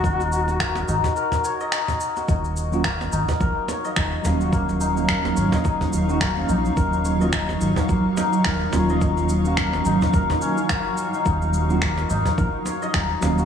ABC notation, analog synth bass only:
X:1
M:4/4
L:1/8
Q:"Swing 16ths" 1/4=107
K:Ebm
V:1 name="Analog synth bass" clef=bass
E,,,3 A,,, z4 | E,,,3 A,,, B,,, z E,,, E,,,- | E,,,3 A,,, z E,,,2 B,,, | E,,,3 A,,, B,,, z E,,, E,,,- |
E,,,3 A,,, E,,, z3 | E,,,3 A,,, B,,, z E,,, E,,, |]